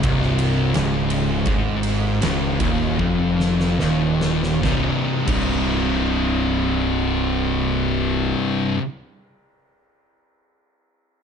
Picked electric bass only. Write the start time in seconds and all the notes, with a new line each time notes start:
0.04 C1
0.76 C#1
1.47 G#1
2.23 C#1
2.60 D#1
2.99 F1
3.81 D#1
4.64 C1
5.28 C1